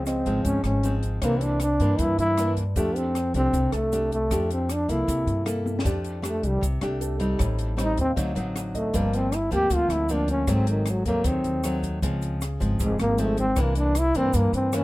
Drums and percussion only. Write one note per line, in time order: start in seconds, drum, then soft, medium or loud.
0.06 cross-stick medium
0.06 closed hi-hat soft
0.06 shaker medium
0.26 kick soft
0.26 closed hi-hat soft
0.26 shaker soft
0.45 kick medium
0.45 closed hi-hat medium
0.45 shaker medium
0.64 cross-stick medium
0.64 closed hi-hat soft
0.64 shaker soft
0.83 closed hi-hat soft
0.83 shaker medium
1.03 kick soft
1.03 closed hi-hat soft
1.03 shaker soft
1.22 kick medium
1.22 cross-stick medium
1.22 closed hi-hat medium
1.22 shaker medium
1.41 closed hi-hat soft
1.41 shaker soft
1.60 cross-stick medium
1.60 closed hi-hat soft
1.60 shaker medium
1.80 kick soft
1.80 closed hi-hat soft
1.80 shaker soft
1.99 kick medium
1.99 closed hi-hat medium
1.99 shaker medium
2.19 closed hi-hat soft
2.19 shaker soft
2.37 cross-stick medium
2.37 closed hi-hat soft
2.37 shaker medium
2.57 kick soft
2.57 closed hi-hat soft
2.57 shaker soft
2.76 kick medium
2.76 closed hi-hat medium
2.76 shaker medium
2.96 closed hi-hat soft
2.96 shaker soft
3.15 cross-stick medium
3.15 closed hi-hat soft
3.15 shaker medium
3.34 kick soft
3.34 closed hi-hat soft
3.34 shaker soft
3.53 kick medium
3.53 closed hi-hat soft
3.53 shaker medium
3.72 cross-stick medium
3.72 closed hi-hat soft
3.72 shaker soft
3.92 closed hi-hat soft
3.92 shaker medium
4.11 kick soft
4.11 closed hi-hat soft
4.11 shaker soft
4.31 kick medium
4.31 cross-stick medium
4.31 closed hi-hat medium
4.31 shaker medium
4.50 closed hi-hat soft
4.50 shaker soft
4.69 cross-stick medium
4.69 closed hi-hat soft
4.69 shaker medium
4.89 kick soft
4.89 closed hi-hat soft
4.89 shaker soft
5.08 kick medium
5.08 closed hi-hat medium
5.08 shaker medium
5.27 closed hi-hat soft
5.27 shaker soft
5.46 cross-stick medium
5.46 closed hi-hat soft
5.46 shaker medium
5.66 high tom soft
5.66 shaker soft
5.79 snare medium
5.85 kick medium
5.85 closed hi-hat medium
5.85 shaker medium
6.04 closed hi-hat soft
6.04 shaker soft
6.24 cross-stick medium
6.24 closed hi-hat soft
6.24 shaker medium
6.43 kick soft
6.43 closed hi-hat soft
6.43 shaker soft
6.63 kick medium
6.63 closed hi-hat medium
6.63 shaker medium
6.81 cross-stick medium
6.81 closed hi-hat soft
6.81 shaker soft
7.01 closed hi-hat soft
7.01 shaker medium
7.20 kick soft
7.20 closed hi-hat soft
7.20 shaker soft
7.39 kick medium
7.39 cross-stick medium
7.39 closed hi-hat medium
7.39 shaker medium
7.59 closed hi-hat soft
7.59 shaker soft
7.78 cross-stick medium
7.78 closed hi-hat soft
7.78 shaker medium
7.97 kick soft
7.97 closed hi-hat soft
7.97 shaker soft
8.17 kick medium
8.17 closed hi-hat medium
8.17 shaker medium
8.36 closed hi-hat soft
8.36 shaker soft
8.56 cross-stick medium
8.56 closed hi-hat soft
8.56 shaker medium
8.75 kick soft
8.75 closed hi-hat soft
8.75 shaker soft
8.94 kick medium
8.94 closed hi-hat medium
8.94 shaker medium
9.13 closed hi-hat soft
9.13 shaker soft
9.32 cross-stick medium
9.32 closed hi-hat soft
9.32 shaker medium
9.51 kick soft
9.51 closed hi-hat soft
9.51 shaker soft
9.70 kick medium
9.70 closed hi-hat medium
9.70 shaker medium
9.90 cross-stick medium
9.90 closed hi-hat soft
9.90 shaker soft
10.09 closed hi-hat soft
10.09 shaker medium
10.28 kick soft
10.28 closed hi-hat soft
10.28 shaker soft
10.47 kick medium
10.47 cross-stick medium
10.47 closed hi-hat medium
10.47 shaker medium
10.67 closed hi-hat soft
10.67 shaker soft
10.86 cross-stick medium
10.86 closed hi-hat soft
10.86 shaker medium
11.05 kick soft
11.05 closed hi-hat soft
11.05 shaker soft
11.24 kick medium
11.24 closed hi-hat medium
11.24 shaker medium
11.44 closed hi-hat soft
11.44 shaker soft
11.64 cross-stick medium
11.64 closed hi-hat soft
11.64 shaker medium
11.83 kick soft
11.83 closed hi-hat soft
11.83 shaker soft
12.02 kick medium
12.02 closed hi-hat medium
12.02 shaker medium
12.22 closed hi-hat soft
12.22 shaker soft
12.41 cross-stick medium
12.41 closed hi-hat soft
12.41 shaker medium
12.61 kick soft
12.61 closed hi-hat soft
12.61 shaker soft
12.79 kick medium
12.79 closed hi-hat medium
12.79 shaker medium
12.99 cross-stick medium
12.99 closed hi-hat soft
12.99 shaker soft
13.18 closed hi-hat soft
13.18 shaker medium
13.37 kick soft
13.37 closed hi-hat soft
13.37 shaker soft
13.56 kick medium
13.56 cross-stick medium
13.56 closed hi-hat medium
13.56 shaker medium
13.75 closed hi-hat soft
13.75 shaker soft
13.95 cross-stick medium
13.95 closed hi-hat soft
13.95 shaker medium
14.14 kick soft
14.14 closed hi-hat soft
14.14 shaker soft
14.33 kick medium
14.33 closed hi-hat medium
14.33 shaker medium
14.53 closed hi-hat soft
14.53 shaker soft
14.72 cross-stick medium
14.72 closed hi-hat soft
14.72 shaker medium